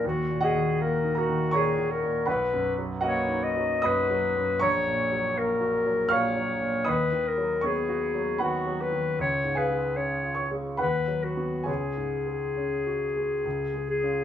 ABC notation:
X:1
M:3/4
L:1/8
Q:1/4=78
K:Cblyd
V:1 name="Clarinet"
G A B G A B | =B z d ^d B2 | [K:C#mix] c2 A2 c2 | B A G2 F B |
c B c z B F | G4- G G |]
V:2 name="Grand piano"
z [Geg]2 [Bb] [dbd']2 | [=B^f=b]2 [^F^df]2 [db^d']2 | [K:C#mix] [cac']4 [ec'e']2 | [dbd']2 [cc']2 [Bfb] z |
z [Geg]2 [cc'] [Bfb]2 | [Gcg]4- [Gcg] z |]
V:3 name="Grand piano" clef=bass
(3E,, B,, E, (3B, E E, (3B,, E, B,, | (3=B,,, ^F,, ^F, (3^A, ^D F, (3F,, F, F,, | [K:C#mix] (3A,,, A,, F, (3A, F F, (3A,, F, A,, | (3D,, D, F, (3B, F F, (3D, F, D, |
(3C,, G,, G, (3C E G, (3D,, F, [B,F] | (3C,, G,, G, (3C F G, (3C,, G, [CE] |]